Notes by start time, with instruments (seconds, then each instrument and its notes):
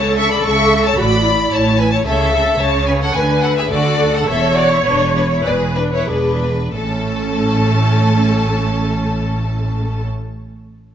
Already playing: double bass section C#2, cello section C#3, viola section A4, violin section C#5 A5
0.17 violin section E5 C#6
0.31 violin section D5 B5
0.44 double bass section C#2, cello section C#3, violin section E5 C#6
0.85 violin section C#5 A5
0.98 double bass section A1, cello section A2, viola section F#4, violin section D5 B5
1.25 viola section E4
1.52 double bass section A1, cello section A2, violin section C#5 A5
1.79 violin section B4 G#5
1.92 violin section C#5 A5
2.05 double bass section C#2, cello section C#3, violin section A4 E5, viola section C#5
2.32 viola section A4
2.59 double bass section C#2, cello section C#3, viola section C#5, violin section C#5 A5
2.87 violin section B4 G#5
3.01 violin section A4 F#5
3.14 double bass section D2, cello section D3, viola section B4, violin section B4 G#5
3.42 violin section A4 F#5
3.56 violin section G#4 E5
3.70 double bass section D2, cello section D3, violin section F#4 D5, viola section A4
4.14 violin section A4 F#5
4.26 double bass section E1, cello section E2, violin section A4 E5, viola section C#5
4.55 violin section F#4 D5
4.70 violin section E4 C#5
4.85 double bass section E1, cello section E2, violin section D4 B4
5.15 violin section D4 B4
5.30 violin section E4 C#5
5.45 double bass section E1, cello section E2, violin section G#4 D5, viola section B4
5.76 violin section D4 B4
5.93 violin section E4 C#5
6.08 double bass section E1, cello section E2, violin section D4 B4, viola section G#4
6.73 double bass section A1, cello section A2, viola section A3 C#4, violin section A4 A5